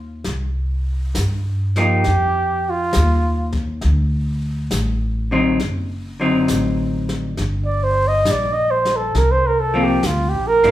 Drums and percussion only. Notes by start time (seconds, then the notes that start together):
0.24 brush sweep, snare
1.15 snare, hi-hat pedal
1.76 snare
2.04 brush sweep, snare
2.93 snare, hi-hat pedal
3.52 kick, snare
3.81 brush sweep, snare
4.71 snare, hi-hat pedal
5.60 brush sweep, snare
6.48 snare, hi-hat pedal
7.09 snare
7.37 brush sweep, snare
8.25 snare, hi-hat pedal
8.85 snare
9.15 brush sweep, snare
10.03 snare, hi-hat pedal
10.64 snare